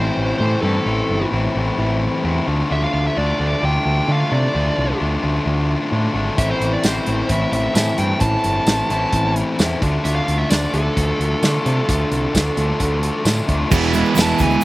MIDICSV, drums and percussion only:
0, 0, Header, 1, 2, 480
1, 0, Start_track
1, 0, Key_signature, 0, "minor"
1, 0, Tempo, 458716
1, 910, Time_signature, 4, 2, 24, 8
1, 15319, End_track
2, 0, Start_track
2, 0, Title_t, "Drums"
2, 6677, Note_on_c, 9, 42, 75
2, 6678, Note_on_c, 9, 36, 100
2, 6782, Note_off_c, 9, 42, 0
2, 6783, Note_off_c, 9, 36, 0
2, 6922, Note_on_c, 9, 42, 56
2, 7026, Note_off_c, 9, 42, 0
2, 7152, Note_on_c, 9, 42, 74
2, 7152, Note_on_c, 9, 54, 99
2, 7165, Note_on_c, 9, 38, 99
2, 7257, Note_off_c, 9, 42, 0
2, 7257, Note_off_c, 9, 54, 0
2, 7270, Note_off_c, 9, 38, 0
2, 7392, Note_on_c, 9, 42, 53
2, 7496, Note_off_c, 9, 42, 0
2, 7630, Note_on_c, 9, 42, 74
2, 7634, Note_on_c, 9, 36, 78
2, 7735, Note_off_c, 9, 42, 0
2, 7738, Note_off_c, 9, 36, 0
2, 7878, Note_on_c, 9, 42, 58
2, 7983, Note_off_c, 9, 42, 0
2, 8112, Note_on_c, 9, 42, 73
2, 8112, Note_on_c, 9, 54, 98
2, 8125, Note_on_c, 9, 38, 94
2, 8217, Note_off_c, 9, 42, 0
2, 8217, Note_off_c, 9, 54, 0
2, 8229, Note_off_c, 9, 38, 0
2, 8349, Note_on_c, 9, 42, 61
2, 8454, Note_off_c, 9, 42, 0
2, 8583, Note_on_c, 9, 42, 78
2, 8592, Note_on_c, 9, 36, 97
2, 8688, Note_off_c, 9, 42, 0
2, 8696, Note_off_c, 9, 36, 0
2, 8831, Note_on_c, 9, 42, 60
2, 8935, Note_off_c, 9, 42, 0
2, 9067, Note_on_c, 9, 42, 77
2, 9067, Note_on_c, 9, 54, 103
2, 9080, Note_on_c, 9, 38, 101
2, 9172, Note_off_c, 9, 42, 0
2, 9172, Note_off_c, 9, 54, 0
2, 9185, Note_off_c, 9, 38, 0
2, 9316, Note_on_c, 9, 42, 55
2, 9420, Note_off_c, 9, 42, 0
2, 9549, Note_on_c, 9, 42, 80
2, 9553, Note_on_c, 9, 36, 79
2, 9654, Note_off_c, 9, 42, 0
2, 9658, Note_off_c, 9, 36, 0
2, 9794, Note_on_c, 9, 42, 55
2, 9899, Note_off_c, 9, 42, 0
2, 10033, Note_on_c, 9, 42, 75
2, 10033, Note_on_c, 9, 54, 96
2, 10046, Note_on_c, 9, 38, 100
2, 10138, Note_off_c, 9, 42, 0
2, 10138, Note_off_c, 9, 54, 0
2, 10151, Note_off_c, 9, 38, 0
2, 10276, Note_on_c, 9, 36, 93
2, 10280, Note_on_c, 9, 42, 58
2, 10380, Note_off_c, 9, 36, 0
2, 10384, Note_off_c, 9, 42, 0
2, 10515, Note_on_c, 9, 42, 70
2, 10620, Note_off_c, 9, 42, 0
2, 10759, Note_on_c, 9, 42, 57
2, 10864, Note_off_c, 9, 42, 0
2, 10992, Note_on_c, 9, 42, 77
2, 10992, Note_on_c, 9, 54, 104
2, 11005, Note_on_c, 9, 38, 94
2, 11097, Note_off_c, 9, 42, 0
2, 11097, Note_off_c, 9, 54, 0
2, 11109, Note_off_c, 9, 38, 0
2, 11235, Note_on_c, 9, 42, 52
2, 11339, Note_off_c, 9, 42, 0
2, 11478, Note_on_c, 9, 36, 76
2, 11479, Note_on_c, 9, 42, 74
2, 11583, Note_off_c, 9, 36, 0
2, 11584, Note_off_c, 9, 42, 0
2, 11728, Note_on_c, 9, 42, 56
2, 11833, Note_off_c, 9, 42, 0
2, 11957, Note_on_c, 9, 42, 69
2, 11957, Note_on_c, 9, 54, 101
2, 11969, Note_on_c, 9, 38, 101
2, 12061, Note_off_c, 9, 42, 0
2, 12061, Note_off_c, 9, 54, 0
2, 12074, Note_off_c, 9, 38, 0
2, 12200, Note_on_c, 9, 42, 60
2, 12304, Note_off_c, 9, 42, 0
2, 12440, Note_on_c, 9, 36, 101
2, 12441, Note_on_c, 9, 42, 77
2, 12544, Note_off_c, 9, 36, 0
2, 12546, Note_off_c, 9, 42, 0
2, 12679, Note_on_c, 9, 42, 60
2, 12784, Note_off_c, 9, 42, 0
2, 12919, Note_on_c, 9, 36, 73
2, 12921, Note_on_c, 9, 42, 78
2, 12921, Note_on_c, 9, 54, 98
2, 12934, Note_on_c, 9, 38, 100
2, 13024, Note_off_c, 9, 36, 0
2, 13026, Note_off_c, 9, 42, 0
2, 13026, Note_off_c, 9, 54, 0
2, 13039, Note_off_c, 9, 38, 0
2, 13155, Note_on_c, 9, 42, 58
2, 13260, Note_off_c, 9, 42, 0
2, 13393, Note_on_c, 9, 42, 79
2, 13395, Note_on_c, 9, 36, 74
2, 13498, Note_off_c, 9, 42, 0
2, 13500, Note_off_c, 9, 36, 0
2, 13634, Note_on_c, 9, 42, 62
2, 13739, Note_off_c, 9, 42, 0
2, 13868, Note_on_c, 9, 42, 77
2, 13868, Note_on_c, 9, 54, 96
2, 13880, Note_on_c, 9, 38, 96
2, 13972, Note_off_c, 9, 42, 0
2, 13972, Note_off_c, 9, 54, 0
2, 13985, Note_off_c, 9, 38, 0
2, 14112, Note_on_c, 9, 42, 58
2, 14114, Note_on_c, 9, 36, 76
2, 14217, Note_off_c, 9, 42, 0
2, 14219, Note_off_c, 9, 36, 0
2, 14351, Note_on_c, 9, 82, 80
2, 14352, Note_on_c, 9, 36, 113
2, 14353, Note_on_c, 9, 49, 125
2, 14456, Note_off_c, 9, 82, 0
2, 14457, Note_off_c, 9, 36, 0
2, 14457, Note_off_c, 9, 49, 0
2, 14467, Note_on_c, 9, 82, 28
2, 14571, Note_off_c, 9, 82, 0
2, 14582, Note_on_c, 9, 82, 74
2, 14595, Note_on_c, 9, 42, 72
2, 14686, Note_off_c, 9, 82, 0
2, 14700, Note_off_c, 9, 42, 0
2, 14701, Note_on_c, 9, 82, 27
2, 14806, Note_off_c, 9, 82, 0
2, 14810, Note_on_c, 9, 82, 96
2, 14834, Note_on_c, 9, 42, 96
2, 14834, Note_on_c, 9, 54, 108
2, 14847, Note_on_c, 9, 38, 111
2, 14914, Note_off_c, 9, 82, 0
2, 14939, Note_off_c, 9, 42, 0
2, 14939, Note_off_c, 9, 54, 0
2, 14951, Note_off_c, 9, 38, 0
2, 15052, Note_on_c, 9, 82, 76
2, 15070, Note_on_c, 9, 36, 80
2, 15078, Note_on_c, 9, 42, 64
2, 15156, Note_off_c, 9, 82, 0
2, 15175, Note_off_c, 9, 36, 0
2, 15175, Note_on_c, 9, 82, 28
2, 15183, Note_off_c, 9, 42, 0
2, 15279, Note_off_c, 9, 82, 0
2, 15319, End_track
0, 0, End_of_file